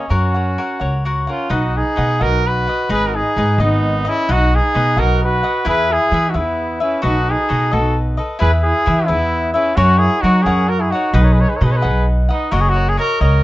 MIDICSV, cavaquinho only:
0, 0, Header, 1, 2, 480
1, 0, Start_track
1, 0, Key_signature, 5, "major"
1, 0, Tempo, 464756
1, 116, Time_signature, 6, 3, 24, 8
1, 2996, Tempo, 458015
1, 14035, End_track
2, 0, Start_track
2, 0, Title_t, "Cavaquinho"
2, 0, Program_c, 0, 24
2, 0, Note_on_c, 0, 75, 54
2, 98, Note_on_c, 0, 66, 54
2, 106, Note_on_c, 0, 70, 66
2, 111, Note_off_c, 0, 75, 0
2, 111, Note_on_c, 0, 73, 61
2, 115, Note_on_c, 0, 78, 71
2, 341, Note_off_c, 0, 78, 0
2, 353, Note_off_c, 0, 73, 0
2, 354, Note_on_c, 0, 78, 38
2, 359, Note_off_c, 0, 70, 0
2, 362, Note_off_c, 0, 66, 0
2, 365, Note_on_c, 0, 73, 38
2, 372, Note_on_c, 0, 70, 37
2, 588, Note_off_c, 0, 70, 0
2, 592, Note_off_c, 0, 73, 0
2, 595, Note_off_c, 0, 78, 0
2, 600, Note_on_c, 0, 70, 53
2, 601, Note_on_c, 0, 66, 43
2, 604, Note_on_c, 0, 73, 44
2, 615, Note_on_c, 0, 78, 55
2, 810, Note_off_c, 0, 78, 0
2, 822, Note_on_c, 0, 78, 47
2, 823, Note_off_c, 0, 66, 0
2, 823, Note_off_c, 0, 73, 0
2, 826, Note_off_c, 0, 70, 0
2, 835, Note_on_c, 0, 66, 39
2, 835, Note_on_c, 0, 73, 49
2, 839, Note_on_c, 0, 70, 48
2, 1074, Note_off_c, 0, 66, 0
2, 1081, Note_off_c, 0, 70, 0
2, 1085, Note_off_c, 0, 78, 0
2, 1086, Note_on_c, 0, 66, 59
2, 1087, Note_off_c, 0, 73, 0
2, 1094, Note_on_c, 0, 70, 57
2, 1096, Note_on_c, 0, 78, 63
2, 1100, Note_on_c, 0, 73, 59
2, 1301, Note_off_c, 0, 78, 0
2, 1314, Note_on_c, 0, 78, 52
2, 1315, Note_off_c, 0, 73, 0
2, 1323, Note_off_c, 0, 66, 0
2, 1324, Note_off_c, 0, 70, 0
2, 1328, Note_on_c, 0, 73, 44
2, 1336, Note_on_c, 0, 70, 46
2, 1544, Note_off_c, 0, 70, 0
2, 1544, Note_on_c, 0, 63, 63
2, 1546, Note_off_c, 0, 78, 0
2, 1547, Note_off_c, 0, 73, 0
2, 1548, Note_on_c, 0, 71, 64
2, 1551, Note_on_c, 0, 75, 74
2, 1558, Note_on_c, 0, 78, 73
2, 2020, Note_off_c, 0, 63, 0
2, 2024, Note_on_c, 0, 63, 49
2, 2030, Note_off_c, 0, 71, 0
2, 2031, Note_off_c, 0, 75, 0
2, 2033, Note_off_c, 0, 78, 0
2, 2034, Note_on_c, 0, 71, 53
2, 2035, Note_on_c, 0, 75, 59
2, 2045, Note_on_c, 0, 78, 55
2, 2255, Note_off_c, 0, 78, 0
2, 2265, Note_off_c, 0, 75, 0
2, 2268, Note_off_c, 0, 63, 0
2, 2268, Note_on_c, 0, 78, 42
2, 2270, Note_off_c, 0, 71, 0
2, 2277, Note_on_c, 0, 75, 51
2, 2281, Note_on_c, 0, 63, 37
2, 2282, Note_on_c, 0, 71, 48
2, 2748, Note_off_c, 0, 78, 0
2, 2761, Note_on_c, 0, 78, 50
2, 2773, Note_off_c, 0, 75, 0
2, 2777, Note_off_c, 0, 71, 0
2, 2778, Note_on_c, 0, 75, 43
2, 2781, Note_on_c, 0, 71, 40
2, 2983, Note_off_c, 0, 75, 0
2, 2986, Note_off_c, 0, 63, 0
2, 2986, Note_off_c, 0, 71, 0
2, 2990, Note_on_c, 0, 63, 70
2, 2990, Note_on_c, 0, 68, 71
2, 2991, Note_off_c, 0, 78, 0
2, 2995, Note_on_c, 0, 75, 85
2, 2999, Note_on_c, 0, 71, 68
2, 3482, Note_off_c, 0, 68, 0
2, 3488, Note_off_c, 0, 63, 0
2, 3492, Note_on_c, 0, 63, 54
2, 3496, Note_on_c, 0, 68, 62
2, 3497, Note_off_c, 0, 71, 0
2, 3501, Note_on_c, 0, 71, 58
2, 3502, Note_off_c, 0, 75, 0
2, 3506, Note_on_c, 0, 75, 53
2, 3712, Note_off_c, 0, 75, 0
2, 3717, Note_off_c, 0, 68, 0
2, 3719, Note_off_c, 0, 71, 0
2, 3720, Note_off_c, 0, 63, 0
2, 3724, Note_on_c, 0, 75, 65
2, 3729, Note_on_c, 0, 68, 48
2, 3731, Note_on_c, 0, 71, 53
2, 3737, Note_on_c, 0, 63, 42
2, 4185, Note_off_c, 0, 75, 0
2, 4198, Note_on_c, 0, 75, 60
2, 4199, Note_off_c, 0, 71, 0
2, 4203, Note_on_c, 0, 71, 52
2, 4210, Note_off_c, 0, 68, 0
2, 4214, Note_off_c, 0, 63, 0
2, 4221, Note_on_c, 0, 68, 49
2, 4435, Note_off_c, 0, 75, 0
2, 4437, Note_off_c, 0, 71, 0
2, 4446, Note_off_c, 0, 68, 0
2, 4446, Note_on_c, 0, 63, 75
2, 4450, Note_on_c, 0, 71, 74
2, 4452, Note_on_c, 0, 75, 78
2, 4457, Note_on_c, 0, 78, 81
2, 4915, Note_off_c, 0, 63, 0
2, 4928, Note_on_c, 0, 63, 57
2, 4930, Note_off_c, 0, 78, 0
2, 4932, Note_off_c, 0, 71, 0
2, 4933, Note_off_c, 0, 75, 0
2, 4936, Note_on_c, 0, 71, 63
2, 4943, Note_on_c, 0, 78, 62
2, 4945, Note_on_c, 0, 75, 57
2, 5152, Note_off_c, 0, 75, 0
2, 5152, Note_off_c, 0, 78, 0
2, 5157, Note_off_c, 0, 71, 0
2, 5159, Note_off_c, 0, 63, 0
2, 5164, Note_on_c, 0, 78, 53
2, 5165, Note_on_c, 0, 75, 50
2, 5169, Note_on_c, 0, 71, 53
2, 5177, Note_on_c, 0, 63, 45
2, 5636, Note_off_c, 0, 78, 0
2, 5644, Note_off_c, 0, 75, 0
2, 5648, Note_on_c, 0, 78, 50
2, 5651, Note_off_c, 0, 71, 0
2, 5654, Note_off_c, 0, 63, 0
2, 5655, Note_on_c, 0, 71, 43
2, 5657, Note_on_c, 0, 75, 51
2, 5868, Note_off_c, 0, 71, 0
2, 5874, Note_on_c, 0, 64, 87
2, 5877, Note_off_c, 0, 75, 0
2, 5879, Note_off_c, 0, 78, 0
2, 5880, Note_on_c, 0, 68, 66
2, 5881, Note_on_c, 0, 71, 74
2, 5889, Note_on_c, 0, 76, 77
2, 6360, Note_off_c, 0, 64, 0
2, 6368, Note_off_c, 0, 68, 0
2, 6372, Note_on_c, 0, 64, 49
2, 6373, Note_off_c, 0, 76, 0
2, 6380, Note_off_c, 0, 71, 0
2, 6383, Note_on_c, 0, 68, 54
2, 6385, Note_on_c, 0, 71, 50
2, 6391, Note_on_c, 0, 76, 64
2, 6586, Note_off_c, 0, 76, 0
2, 6590, Note_off_c, 0, 68, 0
2, 6592, Note_off_c, 0, 71, 0
2, 6599, Note_on_c, 0, 76, 45
2, 6601, Note_off_c, 0, 64, 0
2, 6603, Note_on_c, 0, 68, 49
2, 6604, Note_on_c, 0, 71, 52
2, 6614, Note_on_c, 0, 64, 42
2, 7072, Note_off_c, 0, 76, 0
2, 7084, Note_on_c, 0, 76, 50
2, 7085, Note_off_c, 0, 68, 0
2, 7088, Note_off_c, 0, 71, 0
2, 7092, Note_on_c, 0, 71, 47
2, 7098, Note_off_c, 0, 64, 0
2, 7098, Note_on_c, 0, 68, 42
2, 7306, Note_off_c, 0, 71, 0
2, 7309, Note_off_c, 0, 68, 0
2, 7311, Note_on_c, 0, 66, 67
2, 7313, Note_on_c, 0, 69, 61
2, 7319, Note_on_c, 0, 71, 65
2, 7320, Note_off_c, 0, 76, 0
2, 7324, Note_on_c, 0, 75, 76
2, 7790, Note_off_c, 0, 66, 0
2, 7792, Note_off_c, 0, 69, 0
2, 7802, Note_off_c, 0, 75, 0
2, 7802, Note_on_c, 0, 66, 51
2, 7805, Note_on_c, 0, 69, 53
2, 7809, Note_off_c, 0, 71, 0
2, 7813, Note_on_c, 0, 71, 54
2, 7814, Note_on_c, 0, 75, 64
2, 8029, Note_off_c, 0, 75, 0
2, 8041, Note_off_c, 0, 71, 0
2, 8041, Note_on_c, 0, 75, 50
2, 8043, Note_off_c, 0, 66, 0
2, 8044, Note_off_c, 0, 69, 0
2, 8053, Note_on_c, 0, 71, 43
2, 8054, Note_on_c, 0, 69, 42
2, 8055, Note_on_c, 0, 66, 43
2, 8508, Note_off_c, 0, 75, 0
2, 8515, Note_off_c, 0, 71, 0
2, 8521, Note_on_c, 0, 75, 53
2, 8526, Note_off_c, 0, 69, 0
2, 8528, Note_on_c, 0, 71, 49
2, 8539, Note_off_c, 0, 66, 0
2, 8539, Note_on_c, 0, 69, 45
2, 8746, Note_off_c, 0, 71, 0
2, 8747, Note_on_c, 0, 64, 77
2, 8748, Note_off_c, 0, 69, 0
2, 8751, Note_off_c, 0, 75, 0
2, 8752, Note_on_c, 0, 68, 75
2, 8755, Note_on_c, 0, 76, 74
2, 8758, Note_on_c, 0, 71, 66
2, 9227, Note_off_c, 0, 64, 0
2, 9233, Note_off_c, 0, 68, 0
2, 9233, Note_off_c, 0, 71, 0
2, 9239, Note_on_c, 0, 64, 55
2, 9240, Note_off_c, 0, 76, 0
2, 9245, Note_on_c, 0, 68, 48
2, 9246, Note_on_c, 0, 71, 51
2, 9253, Note_on_c, 0, 76, 67
2, 9458, Note_off_c, 0, 76, 0
2, 9460, Note_off_c, 0, 71, 0
2, 9462, Note_off_c, 0, 68, 0
2, 9469, Note_off_c, 0, 64, 0
2, 9471, Note_on_c, 0, 76, 55
2, 9473, Note_on_c, 0, 71, 51
2, 9474, Note_on_c, 0, 68, 50
2, 9481, Note_on_c, 0, 64, 50
2, 9940, Note_off_c, 0, 76, 0
2, 9952, Note_on_c, 0, 76, 64
2, 9955, Note_off_c, 0, 68, 0
2, 9955, Note_off_c, 0, 71, 0
2, 9967, Note_off_c, 0, 64, 0
2, 9967, Note_on_c, 0, 71, 52
2, 9968, Note_on_c, 0, 68, 48
2, 10190, Note_off_c, 0, 68, 0
2, 10191, Note_off_c, 0, 76, 0
2, 10193, Note_on_c, 0, 66, 66
2, 10194, Note_on_c, 0, 70, 81
2, 10195, Note_off_c, 0, 71, 0
2, 10199, Note_on_c, 0, 73, 83
2, 10199, Note_on_c, 0, 78, 74
2, 10678, Note_off_c, 0, 70, 0
2, 10681, Note_off_c, 0, 66, 0
2, 10684, Note_off_c, 0, 73, 0
2, 10685, Note_on_c, 0, 66, 59
2, 10691, Note_on_c, 0, 70, 62
2, 10695, Note_on_c, 0, 73, 60
2, 10697, Note_off_c, 0, 78, 0
2, 10701, Note_on_c, 0, 78, 58
2, 10908, Note_off_c, 0, 73, 0
2, 10909, Note_off_c, 0, 70, 0
2, 10910, Note_off_c, 0, 78, 0
2, 10913, Note_off_c, 0, 66, 0
2, 10921, Note_on_c, 0, 73, 55
2, 10922, Note_on_c, 0, 70, 52
2, 10922, Note_on_c, 0, 78, 63
2, 10925, Note_on_c, 0, 66, 47
2, 11399, Note_off_c, 0, 78, 0
2, 11403, Note_on_c, 0, 78, 54
2, 11404, Note_off_c, 0, 73, 0
2, 11405, Note_off_c, 0, 70, 0
2, 11424, Note_on_c, 0, 73, 47
2, 11431, Note_on_c, 0, 70, 45
2, 11623, Note_off_c, 0, 66, 0
2, 11623, Note_off_c, 0, 78, 0
2, 11627, Note_on_c, 0, 63, 89
2, 11630, Note_off_c, 0, 70, 0
2, 11630, Note_off_c, 0, 73, 0
2, 11634, Note_on_c, 0, 71, 83
2, 11634, Note_on_c, 0, 75, 72
2, 11636, Note_on_c, 0, 78, 75
2, 12114, Note_off_c, 0, 71, 0
2, 12115, Note_off_c, 0, 63, 0
2, 12119, Note_on_c, 0, 63, 51
2, 12124, Note_off_c, 0, 75, 0
2, 12126, Note_on_c, 0, 71, 60
2, 12129, Note_off_c, 0, 78, 0
2, 12129, Note_on_c, 0, 75, 55
2, 12134, Note_on_c, 0, 78, 63
2, 12332, Note_off_c, 0, 75, 0
2, 12333, Note_off_c, 0, 78, 0
2, 12339, Note_off_c, 0, 71, 0
2, 12345, Note_on_c, 0, 75, 43
2, 12345, Note_on_c, 0, 78, 59
2, 12347, Note_off_c, 0, 63, 0
2, 12352, Note_on_c, 0, 71, 46
2, 12359, Note_on_c, 0, 63, 47
2, 12828, Note_off_c, 0, 78, 0
2, 12832, Note_on_c, 0, 78, 60
2, 12843, Note_off_c, 0, 71, 0
2, 12846, Note_off_c, 0, 75, 0
2, 12850, Note_on_c, 0, 75, 53
2, 12854, Note_on_c, 0, 71, 48
2, 13066, Note_off_c, 0, 63, 0
2, 13070, Note_off_c, 0, 71, 0
2, 13070, Note_on_c, 0, 66, 65
2, 13071, Note_off_c, 0, 75, 0
2, 13071, Note_off_c, 0, 78, 0
2, 13074, Note_on_c, 0, 70, 81
2, 13080, Note_on_c, 0, 73, 74
2, 13084, Note_on_c, 0, 75, 74
2, 13295, Note_off_c, 0, 75, 0
2, 13307, Note_off_c, 0, 73, 0
2, 13307, Note_on_c, 0, 75, 46
2, 13317, Note_off_c, 0, 70, 0
2, 13319, Note_on_c, 0, 73, 43
2, 13328, Note_off_c, 0, 66, 0
2, 13330, Note_on_c, 0, 70, 38
2, 13545, Note_off_c, 0, 70, 0
2, 13549, Note_off_c, 0, 73, 0
2, 13551, Note_on_c, 0, 66, 51
2, 13552, Note_off_c, 0, 75, 0
2, 13558, Note_on_c, 0, 70, 46
2, 13562, Note_on_c, 0, 73, 51
2, 13571, Note_on_c, 0, 75, 71
2, 13787, Note_off_c, 0, 75, 0
2, 13789, Note_off_c, 0, 73, 0
2, 13790, Note_off_c, 0, 66, 0
2, 13793, Note_off_c, 0, 70, 0
2, 13799, Note_on_c, 0, 75, 59
2, 13801, Note_on_c, 0, 73, 51
2, 13809, Note_on_c, 0, 70, 50
2, 13813, Note_on_c, 0, 66, 45
2, 14030, Note_off_c, 0, 66, 0
2, 14035, Note_off_c, 0, 70, 0
2, 14035, Note_off_c, 0, 73, 0
2, 14035, Note_off_c, 0, 75, 0
2, 14035, End_track
0, 0, End_of_file